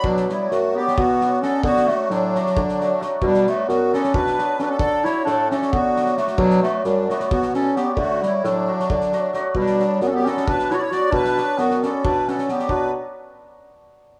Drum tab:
SD |-oo-o--o--o-o-|-oo-o-oo-oo-o-|-oo-o-oo-oo-o-|--o-o-oo--oooo|
BD |o-------o-----|o-------o-----|o-------o-----|o-------o-----|

SD |-oo-o-oo-oo-o-|--o-o--o-oo-o-|-oo-o-oo-oo-o-|-oo-ooo---oooo|
BD |o-------o-----|o-------o-----|o-------o-----|o-------o-----|

SD |--------------|
BD |o-------------|